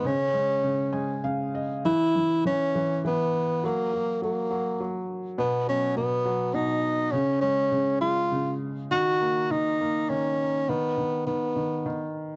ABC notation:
X:1
M:3/4
L:1/8
Q:1/4=102
K:C#mix
V:1 name="Tenor saxophone"
C4 z2 | =E2 C2 B,2 | A,2 A,3 z | B, C B,2 D2 |
C C2 E2 z | F2 D2 C2 | B,2 B,3 z |]
V:2 name="Felt piano"
z3 g e d | z6 | z6 | z6 |
z6 | z6 | z6 |]
V:3 name="Felt piano" clef=bass
C, G, C, G, C,2 | =E, E, E, E, E,2 | F, F, F, F, F,2 | B,, F, B,, F, B,,2 |
C, G, C, G, C,2 | D, A, D, A, D,2 | D, D, D, D, D,2 |]